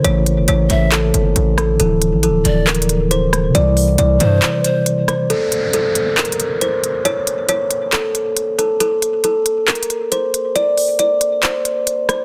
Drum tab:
HH |x--x--x--x--x--x--x--x--|x--x--x--x--xxxx--x--x--|x--o--x--x--x--x--x--x--|x--x--x--x--xxxx--x--x--|
CP |------------x-----------|------------x-----------|------------x-----------|------------x-----------|
SD |---------------------r--|---------------------r--|---------------------r--|------------------------|

HH |x--x--x--x--x--x--x--x--|x--x--x--x--xxxx--x--x--|x--o--x--x--x--x--x--x--|
CP |------------x-----------|------------x-----------|------------x-----------|
SD |------------------------|------------------------|---------------------r--|